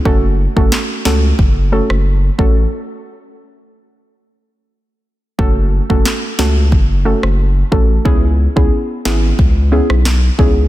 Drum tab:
CP |----x-x---------|----------------|----x-x---------|------x-----x---|
SD |----o-o----r----|----------------|----o-o----r----|------o----ro---|
BD |o--o----o-----o-|----------------|o--o----o-----o-|o--o----o-----o-|